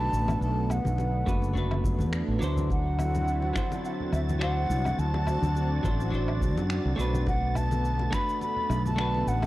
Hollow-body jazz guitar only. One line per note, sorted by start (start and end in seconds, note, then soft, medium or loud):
0.00 1.23 A3 medium
0.00 1.24 D4 medium
0.00 1.24 F#4 medium
0.00 1.25 B4 medium
1.26 1.52 A3 medium
1.26 1.53 D4 medium
1.26 1.53 F#4 medium
1.26 1.53 B4 medium
1.54 2.37 A3 medium
1.54 2.38 D4 medium
1.54 2.39 F#4 medium
1.58 2.39 B4 medium
2.39 3.51 F#3 medium
2.39 3.52 D4 medium
2.39 3.53 E4 medium
2.44 3.54 C5 loud
3.53 4.37 F#3 medium
3.53 4.38 D4 medium
3.53 4.39 E4 medium
3.58 4.39 C5 medium
4.39 5.80 F#3 medium
4.39 5.81 D4 medium
4.39 5.82 E4 medium
4.44 5.82 C5 medium
5.83 6.09 F#3 medium
5.83 6.09 D4 medium
5.83 6.10 E4 medium
5.83 6.10 C5 medium
6.10 6.94 F#3 medium
6.10 6.95 D4 medium
6.10 6.96 E4 medium
6.15 6.96 C5 loud
6.96 8.08 A3 loud
6.96 8.09 D4 medium
6.96 8.10 F#4 medium
7.01 8.11 B4 loud
8.10 8.94 A3 medium
8.10 8.95 D4 medium
8.10 8.96 F#4 medium
8.15 8.96 B4 medium
8.96 9.46 A3 medium
8.96 9.46 D4 medium
8.96 9.46 F#4 medium
9.00 9.46 B4 medium